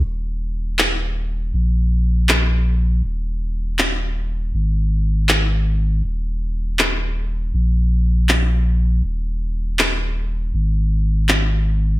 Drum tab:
CP |----x---|----x---|----x---|----x---|

CP |----x---|----x---|----x---|----x---|